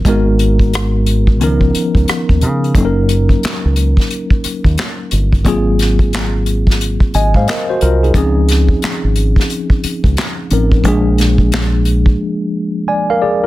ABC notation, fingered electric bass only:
X:1
M:4/4
L:1/16
Q:"Swing 16ths" 1/4=89
K:Abdor
V:1 name="Fingered electric bass" clef=bass
A,,,8 D,,2 z D,, z E,, D,2 | G,,,4 z D,,2 z4 E,, z2 =G,,,2 | A,,,8- A,,, z A,,, A,, z2 =C,,2 | D,,4 z A,,,2 z4 D,, z2 =A,,,2 |
B,,,8 z8 |]